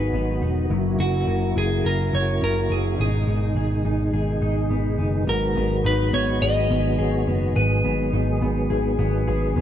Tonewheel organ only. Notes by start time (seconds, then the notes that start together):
Already playing: D#3 F#3 G#3 B3 F#4
0.70 C#3 F#3 A#3 E4
2.98 B2 D#3 G#3 D#4 G#4
5.27 D#3 F#3 G#3 B3 F#4
7.55 G#4